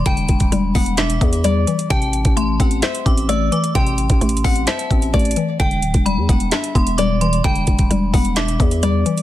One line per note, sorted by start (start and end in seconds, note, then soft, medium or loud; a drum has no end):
0.00 0.98 E3 medium
0.00 0.51 G3 medium
0.00 0.52 B3 medium
0.00 0.29 D4 loud
0.06 0.28 E1 loud
0.06 1.21 D3 loud
0.06 0.71 G5 loud
0.06 0.94 B5 loud
0.06 kick loud
0.06 closed hi-hat medium
0.17 closed hi-hat medium
0.29 0.51 E1 loud
0.29 kick medium
0.29 closed hi-hat medium
0.40 kick loud
0.40 closed hi-hat medium
0.52 0.74 E1 loud
0.52 1.43 G3 loud
0.52 closed hi-hat medium
0.75 1.19 E1 loud
0.75 1.20 B3 medium
0.75 0.96 F#5 medium
0.75 kick loud
0.75 open hi-hat medium
0.86 closed hi-hat medium
0.97 1.91 D4 loud
0.97 1.41 E5 medium
0.97 1.86 D6 medium
0.97 snare loud
0.97 clap medium
0.97 closed hi-hat medium
1.10 closed hi-hat medium
1.21 1.66 E2 loud
1.21 1.91 B3 medium
1.21 kick loud
1.21 closed hi-hat medium
1.33 closed hi-hat medium
1.44 1.91 G3 loud
1.44 1.88 D5 medium
1.44 closed hi-hat medium
1.67 1.90 E3 medium
1.67 closed hi-hat medium
1.79 closed hi-hat medium
1.90 2.24 A1 loud
1.90 3.06 C3 medium
1.90 2.56 G5 loud
1.90 2.34 A5 loud
1.90 kick loud
1.90 closed hi-hat medium
2.02 closed hi-hat medium
2.13 closed hi-hat medium
2.25 2.58 A1 loud
2.25 kick loud
2.25 closed hi-hat medium
2.37 3.28 A3 medium
2.37 3.02 C6 medium
2.37 closed hi-hat medium
2.60 2.82 A1 loud
2.60 3.05 C4 medium
2.60 2.81 F#5 medium
2.60 kick loud
2.60 closed hi-hat medium
2.71 closed hi-hat medium
2.82 3.98 C5 loud
2.82 3.26 E5 medium
2.82 snare loud
2.82 clap medium
2.82 closed hi-hat medium
2.95 closed hi-hat medium
3.06 3.50 A1 loud
3.06 4.21 C4 medium
3.06 3.28 D6 medium
3.06 kick loud
3.06 closed hi-hat medium
3.17 closed hi-hat medium
3.29 4.20 A3 loud
3.29 3.72 D5 medium
3.29 3.51 E6 medium
3.29 closed hi-hat medium
3.52 4.67 E3 medium
3.52 3.74 D6 medium
3.52 closed hi-hat medium
3.64 closed hi-hat medium
3.75 4.08 A1 loud
3.75 4.90 C3 loud
3.75 4.40 G5 loud
3.75 4.63 C6 loud
3.75 kick loud
3.75 closed hi-hat medium
3.87 closed hi-hat medium
3.98 closed hi-hat medium
4.10 4.21 A1 loud
4.10 kick loud
4.10 closed hi-hat medium
4.21 4.43 A1 loud
4.21 5.12 A3 medium
4.21 closed hi-hat medium
4.29 closed hi-hat medium
4.37 closed hi-hat medium
4.44 4.89 C4 medium
4.44 4.65 F#5 medium
4.44 kick loud
4.44 open hi-hat medium
4.56 closed hi-hat medium
4.67 5.60 C5 loud
4.67 5.11 E5 medium
4.67 5.11 A5 medium
4.67 snare loud
4.67 clap medium
4.67 closed hi-hat medium
4.79 closed hi-hat medium
4.91 5.13 A1 loud
4.91 5.60 C4 medium
4.91 kick loud
4.91 closed hi-hat medium
5.02 closed hi-hat medium
5.14 5.36 A1 loud
5.14 5.60 A3 medium
5.14 5.57 D5 medium
5.14 kick loud
5.14 closed hi-hat soft
5.19 closed hi-hat medium
5.25 closed hi-hat medium
5.31 closed hi-hat medium
5.36 5.60 E3 medium
5.36 closed hi-hat medium
5.60 5.84 E1 loud
5.60 6.75 D3 medium
5.60 6.03 G5 loud
5.60 6.25 G5 loud
5.60 kick loud
5.60 closed hi-hat medium
5.71 closed hi-hat medium
5.82 5.94 D1 loud
5.82 closed hi-hat medium
5.94 6.19 E1 loud
5.94 kick medium
5.94 closed hi-hat medium
6.06 6.97 G3 medium
6.06 6.71 B5 medium
6.06 closed hi-hat medium
6.17 6.28 E2 loud
6.29 6.51 E1 loud
6.29 6.74 B3 medium
6.29 6.50 F#5 medium
6.29 kick loud
6.29 closed hi-hat medium
6.40 closed hi-hat medium
6.51 7.68 D4 loud
6.51 6.96 E5 medium
6.51 snare loud
6.51 clap medium
6.51 closed hi-hat medium
6.64 closed hi-hat medium
6.75 7.42 E1 loud
6.75 7.91 B3 medium
6.75 6.97 C6 medium
6.75 kick loud
6.75 closed hi-hat medium
6.87 closed hi-hat medium
6.98 7.89 G3 medium
6.98 7.42 D5 medium
6.98 7.20 D6 medium
6.98 closed hi-hat medium
7.21 8.37 E3 medium
7.21 7.43 C6 medium
7.21 closed hi-hat medium
7.33 closed hi-hat medium
7.44 7.66 E1 loud
7.44 8.60 D3 loud
7.44 8.10 G5 loud
7.44 8.33 B5 loud
7.44 kick loud
7.44 closed hi-hat medium
7.56 closed hi-hat medium
7.67 7.90 E1 loud
7.67 kick medium
7.67 closed hi-hat medium
7.79 kick loud
7.79 closed hi-hat medium
7.91 8.13 E1 loud
7.91 8.82 G3 loud
7.91 closed hi-hat medium
8.14 8.58 E1 loud
8.14 8.59 B3 medium
8.14 8.35 F#5 medium
8.14 kick loud
8.14 open hi-hat medium
8.25 closed hi-hat medium
8.36 9.22 D4 loud
8.36 8.80 E5 medium
8.36 9.22 D6 medium
8.36 snare loud
8.36 clap medium
8.36 closed hi-hat medium
8.48 closed hi-hat medium
8.60 9.04 E2 loud
8.60 9.22 B3 medium
8.60 kick loud
8.60 closed hi-hat medium
8.71 closed hi-hat medium
8.83 9.22 G3 loud
8.83 9.22 D5 medium
8.83 closed hi-hat medium
9.06 9.22 E3 medium
9.06 closed hi-hat medium
9.18 closed hi-hat medium